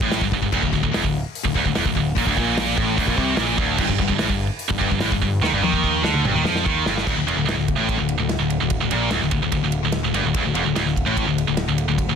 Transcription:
0.01 A1 A2, kick
0.12 snare, open hi-hat
0.21 G1 G2, kick
0.31 G1 G2, kick
0.42 G1 G2, kick
0.52 D1 D2, kick, crash
0.63 D1 D2, kick
0.72 D1 D2, kick, snare
0.83 D1 D2, kick
0.92 E1 E2, snare, open hi-hat
1.02 D1 D2, kick
1.35 open hi-hat
1.44 D1 D2, kick
1.54 D1 D2, kick
1.65 D1 D2, kick
1.75 E1 E2, snare, open hi-hat
1.85 D1 D2, kick
1.95 D1 D2, kick
2.15 A#1 A#2, kick, open hi-hat
2.26 D1 D2, kick
2.37 A#1 A#2, kick, snare
2.57 snare, open hi-hat
2.76 A1 A2, kick
2.98 D1 D2, kick, open hi-hat
3.08 A#1 A#2, kick
3.17 C2 C3, kick
3.37 A#1 A#2, snare, open hi-hat
3.58 D1 D2, kick
3.78 G1 G2, kick, crash
3.89 G1 G2, kick
3.99 G1 G2, kick, snare
4.10 G1 G2, kick
4.19 A1 A2, snare, open hi-hat
4.29 G1 G2, kick
4.59 open hi-hat
4.70 G1 G2, kick
4.79 G1 G2, kick
4.92 G1 G2, kick
5.00 A1 A2, snare, open hi-hat
5.12 G1 G2, kick
5.22 G1 G2, kick
5.41 D#2 D#3, snare
5.52 G1 G2
5.61 D#2 D#3, high tom
5.73 kick
5.84 kick
6.03 D2 D3, snare
6.14 mid tom
6.24 G1 G2, mid tom
6.34 D#2 D#3
6.44 F2 F3, snare
6.56 snare
6.66 D#2 D#3, kick
6.86 G1 G2, snare
6.98 snare
7.07 D1 D2, kick, crash
7.16 D1 D2
7.26 E1 E2, ride
7.37 D1 D2
7.47 D1 D2, snare, ride
7.56 D1 D2, snare
7.68 kick, ride
7.78 A1 A2
7.89 kick, ride
7.97 D1 D2
8.09 ride
8.18 D1 D2
8.29 snare, ride
8.40 D1 D2
8.50 ride
8.61 D1 D2
8.70 kick, ride
8.81 D1 D2
8.91 A#1 A#2, ride
9.11 D1 D2, snare, ride
9.21 D1 D2, snare
9.31 D1 D2, kick, ride
9.41 D1 D2
9.52 D1 D2, kick, ride
9.63 D1 D2
9.72 ride
9.83 D1 D2
9.92 snare, ride
10.03 D1 D2
10.13 G1 G2, ride
10.23 D1 D2
10.34 D1 D2, kick, ride
10.43 D1 D2
10.53 E1 E2, ride
10.64 D1 D2
10.75 D1 D2, snare, ride
10.84 D1 D2, snare
10.96 kick, ride
11.06 A1 A2
11.17 kick, ride
11.26 D1 D2
11.38 ride
11.47 D1 D2
11.57 snare, ride
11.68 D1 D2
11.78 ride
11.88 D1 D2
11.98 kick, ride
12.09 D1 D2

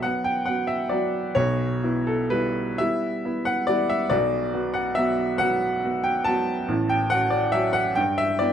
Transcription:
0.02 F#3 B3 F#4 F#5
0.24 G5
0.45 B3 F#4 F#5
0.67 E5
0.89 F#3 B3 F#4 D5
1.35 B1 B2 C#5
1.84 B3 E4
2.07 A4
2.30 G3 B3 E4 B4
2.78 G3 B3 E4 E5
3.25 B3 E4
3.45 F#5
3.67 G3 B3 E4 D5
3.89 E5
4.10 B1 B2 D5
4.53 B3 F#4
4.74 F#5
4.95 F#3 B3 F#4 E5
5.38 F#3 B3 F#4 F#5
5.84 B3 F#4
6.04 G5
6.24 F#3 B3 F#4 A5
6.68 A1 A2
6.89 G5
7.10 C#4 F#4 F#5
7.30 D5
7.52 F#3 C#4 F#4 E5
7.73 F#5
7.95 G2 G5
8.18 E5
8.39 B3 E4 D5

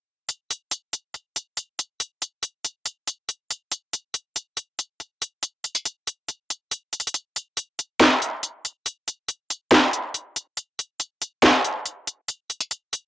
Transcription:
0.29 closed hi-hat
0.51 closed hi-hat
0.71 closed hi-hat
0.93 closed hi-hat
1.14 closed hi-hat
1.36 closed hi-hat
1.57 closed hi-hat
1.79 closed hi-hat
2.00 closed hi-hat
2.22 closed hi-hat
2.43 closed hi-hat
2.65 closed hi-hat
2.86 closed hi-hat
3.07 closed hi-hat
3.29 closed hi-hat
3.50 closed hi-hat
3.71 closed hi-hat
3.93 closed hi-hat
4.14 closed hi-hat
4.36 closed hi-hat
4.57 closed hi-hat
4.79 closed hi-hat
5.00 closed hi-hat
5.22 closed hi-hat
5.43 closed hi-hat
5.64 closed hi-hat
5.75 closed hi-hat
5.86 closed hi-hat
6.07 closed hi-hat
6.29 closed hi-hat
6.50 closed hi-hat
6.71 closed hi-hat
6.93 closed hi-hat
7.00 closed hi-hat
7.07 closed hi-hat
7.14 closed hi-hat
7.36 closed hi-hat
7.57 closed hi-hat
7.79 closed hi-hat
8.00 snare, clap, closed hi-hat
8.22 closed hi-hat
8.43 closed hi-hat
8.65 closed hi-hat
8.86 closed hi-hat
9.08 closed hi-hat
9.28 closed hi-hat
9.50 closed hi-hat
9.71 snare, clap, closed hi-hat
9.93 closed hi-hat
10.14 closed hi-hat
10.36 closed hi-hat
10.57 closed hi-hat
10.79 closed hi-hat
11.00 closed hi-hat
11.22 closed hi-hat
11.43 snare, clap, closed hi-hat
11.65 closed hi-hat
11.86 closed hi-hat
12.08 closed hi-hat
12.29 closed hi-hat
12.50 closed hi-hat
12.61 closed hi-hat
12.71 closed hi-hat
12.93 closed hi-hat

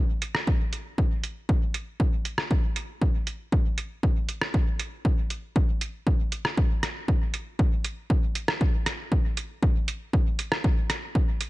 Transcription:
0.22 closed hi-hat
0.35 cross-stick
0.47 kick
0.73 closed hi-hat
0.98 kick
1.24 closed hi-hat
1.49 kick
1.74 closed hi-hat
2.00 kick
2.25 closed hi-hat
2.38 cross-stick
2.51 kick
2.76 closed hi-hat
3.02 kick
3.27 closed hi-hat
3.52 kick
3.78 closed hi-hat
4.03 kick
4.29 closed hi-hat
4.41 cross-stick
4.54 kick
4.79 closed hi-hat
5.05 kick
5.30 closed hi-hat
5.56 kick
5.81 closed hi-hat
6.07 kick
6.32 closed hi-hat
6.45 cross-stick
6.57 kick
6.83 cross-stick, closed hi-hat
7.08 kick
7.34 closed hi-hat
7.59 kick
7.84 closed hi-hat
8.10 kick
8.35 closed hi-hat
8.48 cross-stick
8.61 kick
8.86 cross-stick, closed hi-hat
9.12 kick
9.37 closed hi-hat
9.63 kick
9.88 closed hi-hat
10.13 kick
10.39 closed hi-hat
10.52 cross-stick
10.64 kick
10.90 cross-stick, closed hi-hat
11.15 kick
11.41 closed hi-hat

